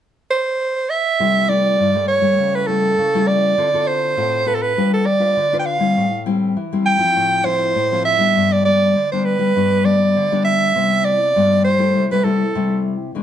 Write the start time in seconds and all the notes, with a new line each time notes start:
0.31 C5
0.90 E5
1.20 C3 G3 A3 E4
1.48 G3 A3 E4 D5
1.80 G2
1.95 G3 A3 E4
2.08 C#5
2.22 G3 A3 E4
2.39 C#3
2.55 B4
2.67 G3 A3 E4 A4
2.98 C#3
3.15 G3 A3 E4
3.27 D5
3.58 D3 C4 F4 A4
3.74 C4 F4 A4
3.87 C5
4.17 A2 C4 F4 A4
4.46 C4 F4 A4 B4
4.55 A4
4.62 B4
4.77 G3 D4 F4 B4
4.94 A4
5.06 D5
5.20 D4 F4 B4
5.37 D3
5.53 D4 F4 B4
5.59 G5
5.66 F5
5.80 G3 C4 E4
5.97 A2
6.26 G3 C4 E4
6.57 E3
6.73 G3 C4 E4
6.86 G5
6.99 F3 C4 E4
7.16 A2
7.44 F3 C4 E4 C5
7.75 A2
7.92 F3 C4 E4
8.05 E5
8.18 G3 B3 D4
8.36 G2
8.52 D5
8.65 G3 B3 D4 D5
8.96 D3
9.12 G3 B3 D4 C5
9.25 B4
9.39 G3 B3 D4
9.56 G2 G3 B3 D4
9.85 G3 B3 D4 D5
10.16 D3
10.32 G3 B3 D4
10.45 E5
10.76 C3 G3 B3 E4
11.04 D5
11.36 G2 G3 B3 E4
11.65 C5
11.78 G3 A3 E4
11.96 C3
12.11 G3 A3 E4 B4
12.24 G3 A3 E4 A4
12.55 C3 G3 A3 E4
13.15 B2 E3 G#3 D4